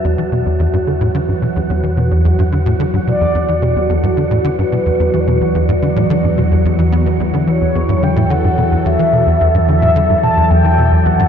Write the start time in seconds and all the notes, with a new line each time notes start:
Already playing: E2 E3 F#3 F#4 F#5
0.04 E2 D5
0.18 E3
0.32 B2
0.46 E2
0.59 E2
0.73 G2
0.87 D3 C#5
1.01 A2
1.15 D3 B4
1.28 G2
1.42 B2
1.56 E2
1.70 E2
1.83 E3
1.97 B2
2.11 E2
2.25 E2
2.39 G2
2.52 D3
2.66 A2
2.80 D3
2.94 G2
3.07 B2 D5
3.21 E2
3.35 E2
3.48 E3
3.62 B2 G4
3.76 E2
3.89 E2 A4
4.03 G2
4.17 D3
4.31 A2
4.44 D3 B4
4.59 G2
4.72 B2
4.86 E2
5.00 E2
5.14 E3
5.20 D5
5.27 B2 C#5
5.41 E2
5.55 E2 D5
5.69 G2
5.82 D3
5.96 A2
6.10 D3
6.24 G2
6.38 B2
6.51 E2
6.65 E2
6.79 E3
6.92 B3
7.06 E3
7.20 E2
7.34 D3
7.47 E3 C#5
7.61 E2
7.75 E2 A4 D5
7.89 G2
8.03 D3 G5
8.16 A2
8.30 D3 F#5
8.44 G2
8.58 B2
8.72 E2
8.85 E2 E5
8.99 E3
9.13 B2
9.27 E2
9.41 E2
9.54 G2
9.68 D3 E5
9.82 A2
9.96 D3
10.10 G2
10.23 B2 A5
10.37 E2
10.51 E2 G5
10.65 E3
10.78 B2
10.92 E2
11.05 E2 F#5
11.19 G2